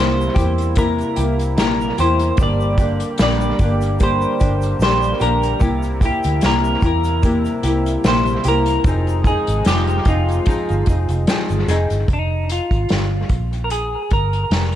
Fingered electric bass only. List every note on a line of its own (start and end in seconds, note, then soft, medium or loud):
0.00 0.29 C2 medium
0.37 1.01 E2 medium
1.17 1.59 C2 loud
1.59 1.91 A#1 medium
1.99 2.31 E2 medium
2.37 3.02 G1 medium
3.20 3.52 A#1 medium
3.60 4.24 G1 medium
4.41 4.73 G1 medium
4.79 5.12 A#1 loud
5.21 5.53 A#1 medium
5.62 6.12 C2 loud
6.25 6.39 D2 medium
6.43 6.75 C2 medium
6.82 7.47 E2 loud
7.63 7.96 C2 loud
8.04 8.36 A#1 loud
8.45 8.77 C2 medium
8.84 9.35 F1 medium
9.48 9.62 G#1 medium
9.66 9.98 F1 medium
10.05 10.38 F1 loud
10.70 10.84 G1 medium
10.88 11.05 F1 medium
11.09 11.24 F1 medium
11.50 11.65 G1 medium
11.68 11.86 F1 medium
11.91 12.05 G1 medium
12.09 12.59 F1 loud
12.71 12.86 G#1 medium
12.91 13.23 G1 medium
13.30 13.95 A#1 medium
14.11 14.43 G1 medium
14.50 14.75 F1 medium